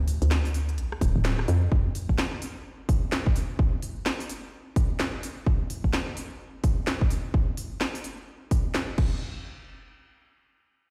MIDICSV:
0, 0, Header, 1, 3, 480
1, 0, Start_track
1, 0, Tempo, 468750
1, 1756, Time_signature, 4, 2, 24, 8
1, 11163, End_track
2, 0, Start_track
2, 0, Title_t, "FM bass"
2, 0, Program_c, 0, 39
2, 0, Note_on_c, 0, 38, 94
2, 182, Note_off_c, 0, 38, 0
2, 224, Note_on_c, 0, 38, 88
2, 797, Note_on_c, 0, 33, 103
2, 813, Note_off_c, 0, 38, 0
2, 918, Note_off_c, 0, 33, 0
2, 1038, Note_on_c, 0, 26, 92
2, 1158, Note_off_c, 0, 26, 0
2, 1185, Note_on_c, 0, 26, 100
2, 1491, Note_off_c, 0, 26, 0
2, 1518, Note_on_c, 0, 41, 102
2, 1725, Note_off_c, 0, 41, 0
2, 11163, End_track
3, 0, Start_track
3, 0, Title_t, "Drums"
3, 78, Note_on_c, 9, 46, 102
3, 180, Note_off_c, 9, 46, 0
3, 224, Note_on_c, 9, 42, 63
3, 317, Note_off_c, 9, 42, 0
3, 317, Note_on_c, 9, 38, 127
3, 317, Note_on_c, 9, 42, 62
3, 420, Note_off_c, 9, 38, 0
3, 420, Note_off_c, 9, 42, 0
3, 463, Note_on_c, 9, 46, 58
3, 557, Note_off_c, 9, 46, 0
3, 557, Note_on_c, 9, 46, 96
3, 659, Note_off_c, 9, 46, 0
3, 705, Note_on_c, 9, 42, 34
3, 798, Note_off_c, 9, 42, 0
3, 798, Note_on_c, 9, 42, 60
3, 901, Note_off_c, 9, 42, 0
3, 945, Note_on_c, 9, 37, 64
3, 1038, Note_on_c, 9, 36, 105
3, 1038, Note_on_c, 9, 46, 91
3, 1048, Note_off_c, 9, 37, 0
3, 1140, Note_off_c, 9, 36, 0
3, 1140, Note_off_c, 9, 46, 0
3, 1278, Note_on_c, 9, 38, 126
3, 1278, Note_on_c, 9, 42, 65
3, 1380, Note_off_c, 9, 38, 0
3, 1380, Note_off_c, 9, 42, 0
3, 1424, Note_on_c, 9, 37, 65
3, 1517, Note_on_c, 9, 46, 93
3, 1527, Note_off_c, 9, 37, 0
3, 1619, Note_off_c, 9, 46, 0
3, 1758, Note_on_c, 9, 36, 111
3, 1860, Note_off_c, 9, 36, 0
3, 1997, Note_on_c, 9, 46, 94
3, 2100, Note_off_c, 9, 46, 0
3, 2144, Note_on_c, 9, 36, 62
3, 2237, Note_on_c, 9, 38, 120
3, 2246, Note_off_c, 9, 36, 0
3, 2339, Note_off_c, 9, 38, 0
3, 2476, Note_on_c, 9, 46, 96
3, 2579, Note_off_c, 9, 46, 0
3, 2957, Note_on_c, 9, 36, 103
3, 2957, Note_on_c, 9, 46, 100
3, 3060, Note_off_c, 9, 36, 0
3, 3060, Note_off_c, 9, 46, 0
3, 3197, Note_on_c, 9, 38, 118
3, 3299, Note_off_c, 9, 38, 0
3, 3344, Note_on_c, 9, 36, 105
3, 3437, Note_on_c, 9, 46, 94
3, 3446, Note_off_c, 9, 36, 0
3, 3539, Note_off_c, 9, 46, 0
3, 3677, Note_on_c, 9, 36, 107
3, 3779, Note_off_c, 9, 36, 0
3, 3916, Note_on_c, 9, 46, 96
3, 4019, Note_off_c, 9, 46, 0
3, 4157, Note_on_c, 9, 38, 115
3, 4259, Note_off_c, 9, 38, 0
3, 4304, Note_on_c, 9, 46, 62
3, 4397, Note_off_c, 9, 46, 0
3, 4397, Note_on_c, 9, 46, 96
3, 4500, Note_off_c, 9, 46, 0
3, 4877, Note_on_c, 9, 36, 101
3, 4877, Note_on_c, 9, 46, 93
3, 4979, Note_off_c, 9, 36, 0
3, 4979, Note_off_c, 9, 46, 0
3, 5116, Note_on_c, 9, 38, 118
3, 5219, Note_off_c, 9, 38, 0
3, 5357, Note_on_c, 9, 46, 97
3, 5460, Note_off_c, 9, 46, 0
3, 5596, Note_on_c, 9, 36, 106
3, 5699, Note_off_c, 9, 36, 0
3, 5837, Note_on_c, 9, 46, 103
3, 5939, Note_off_c, 9, 46, 0
3, 5983, Note_on_c, 9, 36, 56
3, 6077, Note_on_c, 9, 38, 116
3, 6085, Note_off_c, 9, 36, 0
3, 6179, Note_off_c, 9, 38, 0
3, 6316, Note_on_c, 9, 46, 102
3, 6418, Note_off_c, 9, 46, 0
3, 6796, Note_on_c, 9, 46, 97
3, 6797, Note_on_c, 9, 36, 97
3, 6898, Note_off_c, 9, 46, 0
3, 6899, Note_off_c, 9, 36, 0
3, 7036, Note_on_c, 9, 38, 116
3, 7138, Note_off_c, 9, 38, 0
3, 7183, Note_on_c, 9, 36, 101
3, 7275, Note_on_c, 9, 46, 99
3, 7285, Note_off_c, 9, 36, 0
3, 7377, Note_off_c, 9, 46, 0
3, 7517, Note_on_c, 9, 36, 102
3, 7619, Note_off_c, 9, 36, 0
3, 7756, Note_on_c, 9, 46, 100
3, 7858, Note_off_c, 9, 46, 0
3, 7995, Note_on_c, 9, 38, 108
3, 8097, Note_off_c, 9, 38, 0
3, 8141, Note_on_c, 9, 46, 65
3, 8234, Note_off_c, 9, 46, 0
3, 8234, Note_on_c, 9, 46, 101
3, 8337, Note_off_c, 9, 46, 0
3, 8716, Note_on_c, 9, 46, 98
3, 8717, Note_on_c, 9, 36, 96
3, 8818, Note_off_c, 9, 46, 0
3, 8819, Note_off_c, 9, 36, 0
3, 8956, Note_on_c, 9, 38, 114
3, 9058, Note_off_c, 9, 38, 0
3, 9195, Note_on_c, 9, 49, 84
3, 9196, Note_on_c, 9, 36, 110
3, 9298, Note_off_c, 9, 49, 0
3, 9299, Note_off_c, 9, 36, 0
3, 11163, End_track
0, 0, End_of_file